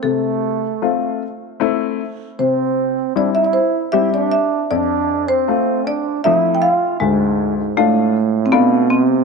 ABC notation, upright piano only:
X:1
M:3/4
L:1/8
Q:1/4=78
K:none
V:1 name="Upright piano"
C,2 [A,CF] z [A,CE] z | C,2 [G,CE] z [G,CG] z | F,,2 [A,CF] z [F,A,C] z | D,,2 [A,DF] z [A,DF] z |]